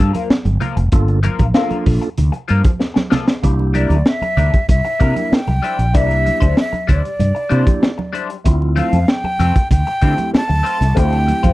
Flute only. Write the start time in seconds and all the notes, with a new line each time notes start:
3.76 D5
4.08 E5
4.70 E5
5.34 G5
5.97 E5
6.59 E5
6.91 D5
8.76 F5
9.09 G5
9.71 G5
10.37 A5
10.98 G5